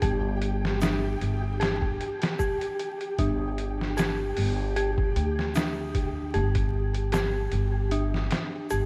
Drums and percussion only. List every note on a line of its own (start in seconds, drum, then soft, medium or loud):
0.02 kick loud
0.02 closed hi-hat medium
0.42 closed hi-hat medium
0.65 snare medium
0.81 snare loud
0.81 closed hi-hat medium
0.81 shaker medium
1.21 closed hi-hat medium
1.61 snare medium
1.61 closed hi-hat medium
1.82 kick medium
2.01 closed hi-hat medium
2.22 snare medium
2.22 closed hi-hat medium
2.39 kick medium
2.39 shaker medium
2.61 closed hi-hat medium
2.79 closed hi-hat medium
3.01 closed hi-hat soft
3.18 kick loud
3.18 closed hi-hat medium
3.58 closed hi-hat medium
3.81 snare soft
3.98 snare loud
3.98 closed hi-hat medium
3.98 shaker medium
4.37 open hi-hat medium
4.76 closed hi-hat medium
4.98 kick medium
5.16 closed hi-hat medium
5.39 snare soft
5.55 snare loud
5.55 closed hi-hat medium
5.55 shaker medium
5.95 kick medium
5.95 closed hi-hat medium
6.34 closed hi-hat medium
6.55 kick loud
6.55 closed hi-hat medium
6.94 closed hi-hat medium
7.12 snare loud
7.12 closed hi-hat medium
7.12 shaker medium
7.52 closed hi-hat medium
7.91 closed hi-hat medium
8.14 snare soft
8.31 snare medium
8.31 closed hi-hat medium
8.70 closed hi-hat medium
8.70 shaker medium